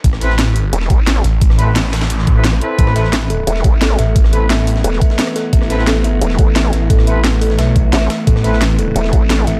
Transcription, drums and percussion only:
0.04 kick, closed hi-hat
0.13 cross-stick, snare
0.21 snare, closed hi-hat
0.30 snare
0.39 snare, closed hi-hat, open hi-hat
0.56 closed hi-hat
0.73 closed hi-hat
0.81 snare
0.90 kick, closed hi-hat
1.07 snare, closed hi-hat
1.24 snare, closed hi-hat
1.41 kick, closed hi-hat
1.50 cross-stick, snare
1.59 closed hi-hat
1.76 snare, closed hi-hat
1.93 snare, open hi-hat
2.01 snare, open hi-hat
2.10 closed hi-hat
2.19 snare
2.27 kick, closed hi-hat
2.44 snare, closed hi-hat
2.53 cross-stick, closed hi-hat
2.61 closed hi-hat
2.79 kick, closed hi-hat
2.87 cross-stick, snare
2.96 snare, closed hi-hat
3.04 snare
3.13 snare, closed hi-hat, open hi-hat
3.30 closed hi-hat
3.47 closed hi-hat
3.56 snare
3.64 kick, closed hi-hat
3.81 snare, closed hi-hat
3.99 snare, closed hi-hat
4.16 kick, closed hi-hat
4.24 cross-stick, snare
4.33 closed hi-hat
4.50 snare, closed hi-hat
4.67 closed hi-hat, open hi-hat
4.76 snare
4.84 closed hi-hat
4.93 snare
5.01 kick, closed hi-hat
5.10 snare
5.19 snare, closed hi-hat
5.27 cross-stick, closed hi-hat
5.36 snare, closed hi-hat
5.53 kick, closed hi-hat
5.62 cross-stick, snare
5.70 snare, closed hi-hat
5.79 snare
5.87 snare, closed hi-hat, open hi-hat
6.04 closed hi-hat
6.21 closed hi-hat
6.30 snare
6.39 kick, closed hi-hat
6.56 snare, closed hi-hat
6.73 snare, closed hi-hat
6.90 kick, closed hi-hat
6.99 cross-stick, snare
7.07 closed hi-hat
7.24 snare, closed hi-hat
7.41 closed hi-hat, open hi-hat
7.50 snare
7.59 snare, closed hi-hat, open hi-hat
7.76 kick, closed hi-hat
7.93 snare, closed hi-hat
8.01 cross-stick, snare
8.10 snare, closed hi-hat, open hi-hat
8.27 kick, closed hi-hat
8.36 cross-stick, snare
8.44 snare, closed hi-hat
8.53 snare
8.61 snare, closed hi-hat, open hi-hat
8.79 closed hi-hat
8.96 closed hi-hat
9.04 snare
9.13 kick, closed hi-hat
9.30 snare, closed hi-hat
9.47 snare, closed hi-hat

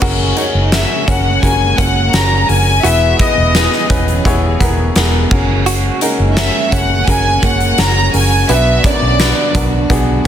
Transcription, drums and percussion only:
0.02 kick, crash
0.37 closed hi-hat
0.72 snare, closed hi-hat
1.08 kick, closed hi-hat
1.43 kick, closed hi-hat
1.78 kick, closed hi-hat
2.13 snare, closed hi-hat
2.49 open hi-hat
2.84 closed hi-hat
3.19 kick, closed hi-hat
3.55 snare, closed hi-hat
3.72 snare
3.90 kick, closed hi-hat
4.08 closed hi-hat
4.25 kick, closed hi-hat
4.60 kick, closed hi-hat
4.96 snare, closed hi-hat
5.31 kick, crash
5.66 closed hi-hat
6.01 closed hi-hat
6.37 snare, closed hi-hat
6.72 kick, closed hi-hat
7.08 kick, closed hi-hat
7.43 kick, closed hi-hat
7.60 closed hi-hat
7.78 snare, closed hi-hat
8.14 open hi-hat
8.49 closed hi-hat
8.84 kick, closed hi-hat
9.20 snare, closed hi-hat
9.55 kick, closed hi-hat
9.90 kick, closed hi-hat

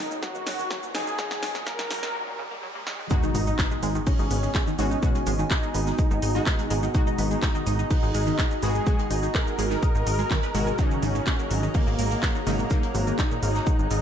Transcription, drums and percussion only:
0.11 shaker
0.23 kick, snare, shaker
0.35 shaker
0.47 snare, open hi-hat, shaker
0.59 shaker
0.71 kick, snare, shaker
0.83 shaker
0.95 snare, open hi-hat, shaker
1.07 shaker
1.19 kick, snare, shaker
1.31 snare, shaker
1.43 snare, open hi-hat, shaker
1.55 snare, shaker
1.67 kick, snare, shaker
1.79 snare, shaker
1.91 snare, open hi-hat, shaker
2.03 snare, shaker
2.87 snare
3.10 kick, shaker
3.23 shaker
3.35 open hi-hat, shaker
3.47 shaker
3.59 kick, snare, clap, shaker
3.71 shaker
3.83 open hi-hat, shaker
3.95 shaker
4.06 kick, open hi-hat, shaker
4.19 shaker
4.30 open hi-hat, shaker
4.43 shaker
4.55 kick, snare, clap, shaker
4.67 shaker
4.79 open hi-hat, shaker
4.91 shaker
5.03 kick, shaker
5.15 closed hi-hat, shaker
5.26 open hi-hat, shaker
5.39 shaker
5.50 kick, snare, clap, shaker
5.63 shaker
5.75 open hi-hat, shaker
5.86 snare, shaker
5.98 kick, shaker
6.11 shaker
6.22 open hi-hat, shaker
6.35 shaker
6.46 kick, snare, clap, shaker
6.59 closed hi-hat, shaker
6.70 open hi-hat, shaker
6.83 shaker
6.94 kick, shaker
7.07 shaker
7.18 open hi-hat, shaker
7.31 shaker
7.42 kick, snare, clap, shaker
7.55 shaker
7.66 open hi-hat, shaker
7.79 shaker
7.91 kick, open hi-hat, shaker
8.03 shaker
8.15 open hi-hat, shaker
8.27 shaker
8.39 kick, snare, clap, shaker
8.51 shaker
8.63 open hi-hat, shaker
8.75 shaker
8.87 kick, shaker
8.99 closed hi-hat, shaker
9.11 open hi-hat, shaker
9.23 shaker
9.35 kick, snare, clap, shaker
9.47 shaker
9.59 open hi-hat, shaker
9.71 snare, shaker
9.83 kick, shaker
9.95 shaker
10.07 open hi-hat, shaker
10.19 shaker
10.31 kick, snare, clap, shaker
10.43 closed hi-hat, shaker
10.54 open hi-hat, shaker
10.67 shaker
10.78 kick, shaker
10.91 shaker
11.03 open hi-hat, shaker
11.15 shaker
11.26 kick, snare, clap, shaker
11.39 shaker
11.51 open hi-hat, shaker
11.63 shaker
11.74 kick, open hi-hat, shaker
11.87 shaker
11.99 open hi-hat, shaker
12.11 shaker
12.23 kick, snare, clap, shaker
12.35 shaker
12.47 open hi-hat, shaker
12.59 shaker
12.70 kick, shaker
12.83 closed hi-hat, shaker
12.95 open hi-hat, shaker
13.07 shaker
13.19 kick, snare, clap, shaker
13.31 shaker
13.43 open hi-hat, shaker
13.55 snare, shaker
13.67 kick, shaker
13.79 shaker
13.90 open hi-hat, shaker

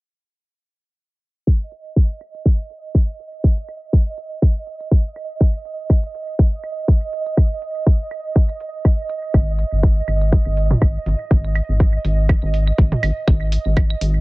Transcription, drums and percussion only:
1.47 kick, claves
1.72 open hi-hat, claves
1.96 kick
2.21 open hi-hat, claves
2.35 claves
2.46 kick
2.70 open hi-hat
2.95 kick, claves
3.19 open hi-hat
3.44 kick
3.58 claves
3.69 open hi-hat, claves
3.93 kick
4.18 open hi-hat, claves
4.42 kick, claves
4.67 open hi-hat
4.81 claves
4.91 kick
5.16 open hi-hat, claves
5.41 kick, claves
5.65 open hi-hat
5.90 kick, claves
6.04 claves
6.14 open hi-hat
6.39 kick
6.64 open hi-hat, claves
6.88 kick
7.13 open hi-hat
7.26 claves
7.37 kick, claves
7.62 open hi-hat
7.87 kick, claves
8.11 open hi-hat, claves
8.36 kick
8.49 claves
8.60 open hi-hat
8.85 kick, claves
9.09 open hi-hat, claves
9.34 kick, claves
9.59 open hi-hat, claves
9.83 kick
10.08 open hi-hat, claves
10.21 claves
10.32 kick
10.57 open hi-hat
10.71 mid tom
10.82 kick, claves
11.06 open hi-hat
11.31 kick
11.45 claves
11.55 open hi-hat, claves
11.80 kick
12.05 open hi-hat, claves
12.29 kick, claves
12.54 open hi-hat
12.68 claves
12.78 kick
12.92 mid tom
13.03 open hi-hat, claves
13.28 kick, claves
13.52 open hi-hat
13.77 kick, claves
13.90 claves
14.01 open hi-hat

